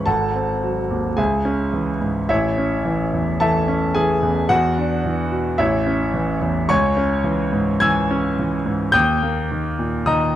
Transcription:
0.06 1.15 G#1 medium
0.06 1.14 A4 medium
0.06 1.14 F#5 medium
0.06 1.18 A5 medium
0.35 0.79 C4 medium
0.62 1.07 F#3 soft
0.90 1.18 D#2 soft
1.17 2.26 C#2 medium
1.17 1.98 G#4 medium
1.17 1.98 E5 medium
1.17 2.01 G#5 medium
1.45 1.90 C#4 medium
1.73 2.18 E3 soft
2.01 2.29 G#2 soft
2.29 3.38 A1 medium
2.29 3.37 E4 medium
2.29 3.37 C#5 medium
2.29 3.40 E5 medium
2.58 3.02 C#4 medium
2.85 3.30 E3 medium
3.13 3.58 E2 soft
3.40 3.85 E3 medium
3.40 3.92 A4 medium
3.40 3.92 E5 medium
3.40 3.95 A5 medium
3.68 4.12 C#4 medium
3.94 4.39 E3 medium
3.94 4.46 G#4 medium
3.94 4.50 G#5 medium
4.23 4.48 E2 soft
4.49 5.56 E2 medium
4.49 5.55 F#4 medium
4.49 5.59 F#5 loud
4.78 5.21 D4 medium
5.05 5.49 E3 medium
5.31 5.59 B2 soft
5.58 6.66 A1 medium
5.58 6.38 E4 medium
5.58 6.38 C#5 medium
5.58 6.41 E5 medium
5.86 6.31 C#4 medium
6.14 6.58 E3 medium
6.41 6.69 E2 medium
6.69 7.78 C#2 medium
6.69 7.78 C#5 medium
6.69 7.78 G#5 medium
6.69 7.82 C#6 loud
6.97 7.41 C#4 medium
7.24 7.70 E3 medium
7.52 7.99 G#2 medium
7.80 8.27 E3 medium
7.80 8.90 G#5 medium
7.80 8.90 E6 medium
7.80 8.94 G#6 loud
8.11 8.55 C#4 medium
8.39 8.84 E3 medium
8.66 8.94 G#2 medium
8.92 10.03 D#2 medium
8.92 10.03 G5 medium
8.92 10.03 D#6 medium
8.92 10.06 G6 loud
9.22 9.68 A#3 medium
9.51 9.96 D#3 medium
9.79 10.24 A#2 medium
10.06 10.36 D#3 medium
10.06 10.36 D#5 medium
10.06 10.36 A#5 medium
10.06 10.36 D#6 medium

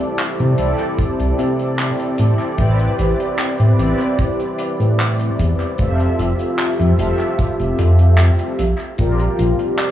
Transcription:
0.00 0.53 C4 medium
0.00 0.54 E4 medium
0.00 0.54 G4 medium
0.00 0.55 A4 medium
0.00 0.55 D5 medium
0.19 clap loud
0.19 closed hi-hat medium
0.40 0.54 C3 loud
0.40 closed hi-hat soft
0.57 0.74 C2 medium
0.57 2.53 C4 medium
0.57 2.54 E4 medium
0.57 2.54 G4 medium
0.57 2.55 A4 medium
0.57 2.55 D5 medium
0.57 closed hi-hat medium
0.79 closed hi-hat medium
0.98 1.15 C2 soft
0.98 kick loud
0.98 closed hi-hat medium
1.19 1.34 C2 medium
1.19 closed hi-hat medium
1.39 1.91 C3 loud
1.39 closed hi-hat medium
1.59 closed hi-hat medium
1.79 clap loud
1.79 closed hi-hat medium
1.99 closed hi-hat medium
2.18 2.34 A2 medium
2.18 closed hi-hat loud
2.40 closed hi-hat soft
2.57 2.88 A1 loud
2.57 3.74 C4 medium
2.57 3.74 E4 medium
2.57 3.74 G4 medium
2.57 3.75 B4 medium
2.57 3.75 D5 medium
2.57 kick loud
2.57 closed hi-hat medium
2.79 closed hi-hat medium
2.99 3.14 A1 loud
2.99 closed hi-hat medium
3.20 closed hi-hat medium
3.39 clap loud
3.39 closed hi-hat medium
3.60 3.74 A2 loud
3.60 closed hi-hat medium
3.78 3.94 A1 medium
3.78 5.74 C4 medium
3.78 5.74 E4 medium
3.78 5.74 G4 medium
3.78 5.75 B4 medium
3.78 5.75 D5 medium
3.78 closed hi-hat medium
4.01 closed hi-hat medium
4.19 kick loud
4.19 closed hi-hat medium
4.40 closed hi-hat medium
4.58 closed hi-hat loud
4.80 5.31 A2 medium
4.80 closed hi-hat medium
4.99 clap loud
4.99 closed hi-hat medium
5.20 closed hi-hat medium
5.39 5.54 E2 loud
5.39 kick medium
5.39 closed hi-hat loud
5.60 closed hi-hat medium
5.77 6.09 F1 loud
5.77 6.94 C4 medium
5.77 6.94 F4 medium
5.77 6.94 G4 medium
5.77 6.95 A4 medium
5.77 6.95 E5 medium
5.77 kick loud
5.77 closed hi-hat medium
6.00 closed hi-hat medium
6.19 6.34 F1 loud
6.19 closed hi-hat medium
6.39 closed hi-hat medium
6.59 clap loud
6.59 closed hi-hat medium
6.80 6.94 F2 loud
6.80 closed hi-hat medium
6.97 7.14 F1 medium
6.97 8.56 C4 medium
6.97 8.56 F4 medium
6.97 8.56 G4 medium
6.97 8.57 A4 medium
6.97 8.57 E5 medium
6.97 closed hi-hat medium
7.20 closed hi-hat soft
7.39 7.56 F1 soft
7.39 kick loud
7.39 closed hi-hat medium
7.60 7.74 F1 loud
7.60 closed hi-hat medium
7.79 8.31 F2 loud
7.79 closed hi-hat loud
7.99 closed hi-hat medium
8.18 clap loud
8.18 closed hi-hat medium
8.39 closed hi-hat medium
8.59 8.74 A#1 medium
8.59 closed hi-hat medium
8.79 closed hi-hat medium
8.97 9.29 A#1 loud
8.97 9.91 C4 medium
8.97 9.91 F4 medium
8.97 9.91 G4 medium
8.97 9.91 A#4 medium
8.97 9.91 D5 medium
8.97 kick loud
8.97 closed hi-hat medium
9.19 closed hi-hat medium
9.39 9.54 A#1 medium
9.39 closed hi-hat medium
9.59 closed hi-hat medium
9.79 clap loud
9.79 closed hi-hat medium

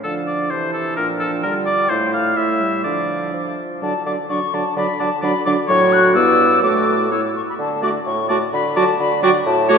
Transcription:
0.04 0.53 D3 medium
0.04 0.53 F3 medium
0.04 0.53 D4 soft
0.04 0.15 A4 medium
0.04 0.48 F5 medium
0.27 0.52 D5 medium
0.51 0.97 C3 medium
0.51 1.00 E3 medium
0.51 0.99 E4 medium
0.51 0.73 C5 medium
0.51 1.00 A5 medium
0.73 0.96 A4 medium
0.97 1.43 A#2 medium
0.97 1.46 F3 medium
0.97 1.45 D4 medium
0.97 1.07 A#4 medium
0.97 1.92 G5 medium
1.20 1.30 A4 medium
1.43 1.89 D3 medium
1.43 1.90 G3 medium
1.43 1.92 F4 medium
1.43 1.54 A#4 medium
1.66 1.91 D5 loud
1.89 2.36 A2 medium
1.89 2.36 A3 medium
1.89 2.85 E4 medium
1.89 2.13 C5 loud
1.89 2.39 F5 medium
2.14 2.38 F5 loud
2.37 2.84 A2 medium
2.37 2.63 A3 medium
2.37 2.84 E5 medium
2.37 2.85 E5 medium
2.61 2.87 G3 medium
2.84 3.33 D3 medium
2.84 3.58 F3 medium
2.84 3.57 D4 soft
2.84 3.56 D5 medium
2.84 3.57 F5 soft
3.34 3.81 F3 soft
3.82 3.93 D3 medium
3.82 3.93 F#3 medium
3.82 3.93 D4 medium
3.82 3.93 D5 medium
3.82 4.04 A5 loud
4.06 4.17 D3 medium
4.06 4.17 F#3 medium
4.06 4.17 D4 medium
4.06 4.17 D5 medium
4.06 4.12 D6 medium
4.30 4.40 D3 medium
4.30 4.41 F#3 medium
4.30 4.41 D4 medium
4.30 4.41 D5 medium
4.30 4.56 C#6 loud
4.53 4.64 D3 medium
4.53 4.64 F#3 medium
4.53 4.64 D4 medium
4.53 4.64 D5 medium
4.53 4.77 A5 loud
4.77 4.87 D3 medium
4.77 4.87 F#3 medium
4.77 4.88 D4 medium
4.77 4.88 D5 medium
4.77 5.01 B5 loud
5.00 5.11 D3 medium
5.00 5.11 F#3 medium
5.00 5.11 D4 medium
5.00 5.10 D5 medium
5.00 5.22 A5 loud
5.22 5.34 D3 medium
5.22 5.33 F#3 medium
5.22 5.34 D4 medium
5.22 5.32 D5 medium
5.22 5.45 B5 loud
5.46 5.57 D3 loud
5.46 5.57 F#3 medium
5.46 5.57 D4 medium
5.46 5.56 D5 medium
5.46 5.52 D6 loud
5.68 6.18 A2 loud
5.68 6.17 F#3 loud
5.68 6.17 F#4 loud
5.68 6.12 C#5 loud
5.68 5.94 C#6 loud
5.92 6.14 F#6 loud
6.15 6.65 G2 medium
6.15 6.65 B3 loud
6.15 6.63 E4 loud
6.15 6.62 D5 medium
6.15 6.62 E6 loud
6.63 7.35 A2 medium
6.63 7.11 A3 medium
6.63 7.13 F#4 medium
6.63 7.10 D5 medium
6.63 7.10 D6 loud
7.11 7.22 A3 medium
7.11 7.35 E4 medium
7.11 7.22 C#5 medium
7.11 7.23 E6 medium
7.25 7.30 D6 medium
7.36 7.41 C#6 medium
7.50 7.54 B5 medium
7.59 7.98 D3 medium
7.59 7.82 A5 loud
7.82 7.91 A3 medium
7.82 7.91 F#4 medium
7.82 7.91 D5 medium
7.82 7.90 D6 loud
8.06 8.45 A2 medium
8.06 8.29 C#6 loud
8.29 8.38 A3 medium
8.29 8.38 F#4 medium
8.29 8.38 D5 medium
8.29 8.35 A5 loud
8.53 8.92 D3 loud
8.53 8.78 B5 loud
8.76 8.85 F#3 loud
8.76 8.85 F#4 medium
8.76 8.85 D5 loud
8.76 8.99 A5 loud
9.00 9.39 D3 loud
9.00 9.23 B5 loud
9.23 9.31 F#3 loud
9.23 9.31 F#4 loud
9.23 9.31 D5 loud
9.23 9.30 G5 loud
9.46 9.78 A2 loud
9.46 9.69 A5 loud
9.69 9.78 A3 loud
9.69 9.78 F#4 loud
9.69 9.77 C#5 loud
9.69 9.77 D6 loud

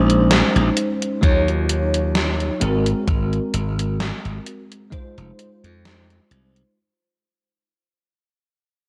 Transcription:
0.00 0.41 A#1 medium
0.00 1.14 G#3 medium
0.00 1.14 C#4 medium
0.00 1.15 D#4 medium
0.00 1.15 C5 medium
0.10 closed hi-hat medium
0.31 snare loud
0.31 closed hi-hat medium
0.56 0.69 A#1 medium
0.56 closed hi-hat soft
0.77 closed hi-hat loud
1.02 closed hi-hat medium
1.21 2.49 D#2 medium
1.21 2.52 F#3 medium
1.21 2.53 D#4 medium
1.21 2.53 F4 medium
1.21 2.54 C#5 medium
1.21 kick loud
1.21 closed hi-hat medium
1.48 closed hi-hat soft
1.69 closed hi-hat medium
1.94 closed hi-hat medium
2.15 snare loud
2.15 closed hi-hat medium
2.40 closed hi-hat soft
2.60 2.92 G#1 medium
2.60 4.83 G#3 medium
2.60 4.83 C4 medium
2.60 4.84 F#4 medium
2.60 4.84 A#4 loud
2.60 closed hi-hat medium
2.86 closed hi-hat medium
3.08 3.38 G#1 loud
3.08 kick loud
3.08 closed hi-hat medium
3.33 closed hi-hat soft
3.54 4.10 G#1 medium
3.54 closed hi-hat medium
3.79 closed hi-hat medium
4.00 snare loud
4.00 closed hi-hat medium
4.25 4.38 G#1 medium
4.25 closed hi-hat soft
4.46 closed hi-hat medium
4.72 closed hi-hat medium
4.91 6.67 G#3 medium
4.91 6.68 D#4 medium
4.91 6.68 F4 medium
4.91 6.69 C5 medium
4.91 kick loud
4.91 closed hi-hat medium
5.18 5.31 F1 medium
5.18 closed hi-hat soft
5.39 closed hi-hat medium
5.64 6.18 F2 medium
5.64 closed hi-hat medium
5.85 snare loud
5.85 closed hi-hat medium
6.10 closed hi-hat soft
6.31 6.62 C2 loud
6.31 closed hi-hat medium
6.56 closed hi-hat medium

